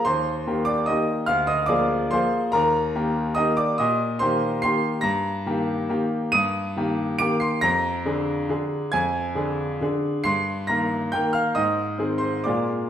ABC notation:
X:1
M:3/4
L:1/8
Q:1/4=141
K:Eb
V:1 name="Grand piano"
[cc']3 [dd'] [ee']2 | [ff'] [ee'] [dd']2 [cc']2 | [Bb]4 [ee'] [dd'] | [ee']2 [cc']2 [c'c'']2 |
[bb']6 | [e'e'']4 [d'd''] [c'c''] | [bb']6 | [aa']4 z2 |
[c'c'']2 [bb']2 [gg'] [ff'] | [ee']3 [cc'] [dd']2 |]
V:2 name="Grand piano"
E,,2 [E,B,G]2 [E,B,G]2 | D,,2 [F,B,A]2 [F,B,A]2 | E,,2 [E,B,G]2 [E,B,G]2 | B,,2 [E,B,G]2 [E,B,G]2 |
G,,2 [E,B,G]2 [E,B,G]2 | G,,2 [E,B,G]2 [E,B,G]2 | F,,2 [D,DA]2 [D,DA]2 | F,,2 [D,DA]2 [D,DA]2 |
G,,2 [E,B,B]2 [E,B,B]2 | A,,2 [E,CA]2 [B,,A,B,F]2 |]